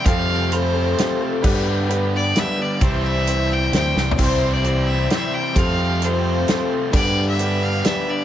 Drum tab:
CC |------------------|x-----------------|------------------|x-----------------|
HH |x-----x-----x-----|------x-----x-----|x-----x-----x-----|------x-----x-----|
SD |------------o-----|------------o-----|------------o--o--|------------o-----|
FT |------------------|------------------|-----------------o|------------------|
BD |o-----------------|o-----------------|o-----------------|o-----------------|

CC |------------------|x-----------------|
HH |x-----x-----x-----|------x-----x-----|
SD |------------o-----|------------o-----|
FT |------------------|------------------|
BD |o-----------------|o-----------------|